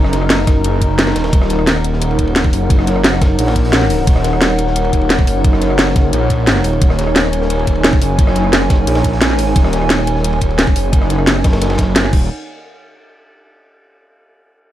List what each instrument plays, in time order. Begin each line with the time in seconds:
Already playing: detuned saw bass F#1, analog synth pad D#4 A#4 D#5 A#5
0.04 cross-stick, snare
0.13 snare, closed hi-hat, ride
0.22 cross-stick
0.30 snare, closed hi-hat, ride
0.39 cross-stick, snare
0.47 kick, cross-stick, snare, closed hi-hat, ride
0.64 detuned saw bass F#1, closed hi-hat, ride
0.82 kick, closed hi-hat, ride
0.98 snare, closed hi-hat, ride
1.07 snare, ride
1.16 detuned saw bass D#1, snare, closed hi-hat, ride
1.24 snare, ride
1.33 detuned saw bass D#1, analog synth pad C#5 F#5, kick, closed hi-hat, ride
1.42 cross-stick, snare
1.50 snare, closed hi-hat, ride
1.59 cross-stick
1.67 snare, closed hi-hat, ride
1.76 cross-stick
1.84 closed hi-hat, ride
1.93 snare
2.02 closed hi-hat, ride
2.11 ride
2.19 detuned saw bass D#1, kick, closed hi-hat, ride
2.27 ride
2.36 snare, closed hi-hat, ride
2.44 kick
2.53 detuned saw bass F#1, open hi-hat, ride
2.70 kick, closed hi-hat, ride
2.79 cross-stick, snare
2.87 snare, closed hi-hat, ride
2.96 cross-stick
3.04 snare, closed hi-hat, ride
3.13 cross-stick, snare
3.22 kick, snare, closed hi-hat, ride
3.39 detuned saw bass A#1, closed hi-hat, open hi-hat
3.47 snare, ride
3.56 kick, closed hi-hat
3.65 open hi-hat
3.73 snare, closed hi-hat, ride
3.82 snare
3.90 open hi-hat
3.98 ride
4.07 detuned saw bass D#1, kick, closed hi-hat, ride
4.16 cross-stick, snare
4.24 snare, closed hi-hat, ride
4.33 cross-stick
4.41 snare, closed hi-hat, ride
4.50 cross-stick
4.58 closed hi-hat, ride
4.67 snare
4.76 closed hi-hat, ride
4.85 ride
4.93 detuned saw bass D#1, kick, closed hi-hat, ride
5.01 ride
5.10 snare, closed hi-hat, ride
5.19 kick
5.27 detuned saw bass F#1, open hi-hat, ride
5.44 kick, closed hi-hat, ride
5.53 cross-stick, snare
5.61 snare, closed hi-hat, ride
5.70 cross-stick
5.78 snare, closed hi-hat, ride
5.87 cross-stick, snare
5.96 kick, snare, closed hi-hat, ride
6.13 detuned saw bass A#1, closed hi-hat, ride
6.30 kick, closed hi-hat, ride
6.47 snare, closed hi-hat, ride
6.56 snare
6.64 detuned saw bass D#1, open hi-hat, ride
6.73 ride
6.81 detuned saw bass D#1, analog synth pad G#5, kick, closed hi-hat, ride
6.90 cross-stick, snare
6.99 snare, closed hi-hat, ride
7.07 cross-stick
7.16 snare, closed hi-hat, ride
7.24 cross-stick
7.33 closed hi-hat, ride
7.42 snare
7.50 closed hi-hat, ride
7.59 ride
7.67 detuned saw bass D#1, kick, closed hi-hat, ride
7.75 ride
7.84 snare, closed hi-hat, ride
7.93 kick
8.02 detuned saw bass F#1, open hi-hat, ride
8.18 kick, closed hi-hat, ride
8.27 cross-stick, snare
8.35 snare, closed hi-hat, ride
8.44 cross-stick
8.53 snare, closed hi-hat, ride
8.62 cross-stick, snare
8.70 kick, snare, closed hi-hat, ride
8.87 detuned saw bass A#1, closed hi-hat, open hi-hat
8.95 snare, ride
9.04 kick, closed hi-hat
9.13 open hi-hat
9.21 snare, closed hi-hat, ride
9.30 snare
9.35 detuned saw bass A1, open hi-hat
9.47 ride
9.56 detuned saw bass D#1, kick, closed hi-hat, ride
9.64 cross-stick, snare
9.73 snare, closed hi-hat, ride
9.82 cross-stick
9.89 snare, closed hi-hat, ride
9.99 cross-stick
10.07 closed hi-hat, ride
10.16 snare
10.24 closed hi-hat, ride
10.33 ride
10.41 detuned saw bass D#1, kick, closed hi-hat, ride
10.50 ride
10.58 snare, closed hi-hat, ride
10.67 kick
10.76 detuned saw bass F#1, open hi-hat, ride
10.93 kick, closed hi-hat, ride
11.01 cross-stick, snare
11.10 snare, closed hi-hat, ride
11.19 cross-stick
11.26 snare, closed hi-hat, ride
11.36 cross-stick
11.44 kick, cross-stick, snare, closed hi-hat, ride
11.53 snare, ride
11.61 detuned saw bass F#1, snare, closed hi-hat, ride
11.70 snare, ride
11.78 kick, snare, closed hi-hat, ride
11.96 snare, closed hi-hat, ride
12.04 snare
12.13 detuned saw bass D#1, kick, crash